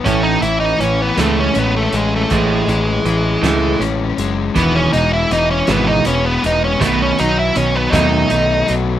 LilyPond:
<<
  \new Staff \with { instrumentName = "Lead electric guitar" } { \time 6/8 \key a \lydian \tempo 4. = 53 cis'16 dis'16 e'16 dis'16 cis'16 b16 a16 cis'16 b16 a16 gis16 a16 | gis2 r4 | b16 cis'16 dis'16 e'16 dis'16 cis'16 b16 dis'16 cis'16 b16 dis'16 cis'16 | b16 cis'16 dis'16 e'16 cis'16 b16 dis'4 r8 | }
  \new Staff \with { instrumentName = "Overdriven electric guitar" } { \clef bass \time 6/8 \key a \lydian a,8 e8 e8 gis8 cis'8 gis8 | a,8 e8 e8 gis8 cis'8 gis8 | e8 gis8 e8 gis8 b8 gis8 | b,8 fis8 b,8 fis8 a8 fis8 | }
  \new Staff \with { instrumentName = "Clean electric guitar" } { \clef bass \time 6/8 \key a \lydian <a, e a>8 <a, e>8 <a, e>8 <a, e a>8 <a, e>8 r8 | <a, e a>8 <a, e>8 <a, e>8 <a, e a>8 <a, e>8 r8 | <e, b, dis>8 <e, b,>8 <e, b,>8 <e, b, dis>8 <e, b,>8 r8 | <b, dis a>8 <b, dis>8 <b, dis>8 <b, dis a>8 <b, dis>8 r8 | }
  \new Staff \with { instrumentName = "Picked electric bass" } { \clef bass \time 6/8 \key a \lydian a,,8 a,,8 a,,8 cis,8 a,,8 a,,8 | a,,8 a,,8 a,,8 cis,8 a,,8 fis,,8 | e,,8 e,,8 e,,8 gis,,8 e,,8 e,,8 | b,,8 b,,8 b,,8 dis,8 b,,8 b,,8 | }
  \new DrumStaff \with { instrumentName = "Drums" } \drummode { \time 6/8 <hh bd>8 hh8 hh8 <hh sn>8 hh8 hh8 | <hh bd>8 hh8 hh8 <hh sn>8 hh8 hh8 | <hh bd>8 hh8 hh8 <hh sn>8 hh8 hh8 | <hh bd>8 hh8 hh8 <hh bd sn>8 hh8 hh8 | }
>>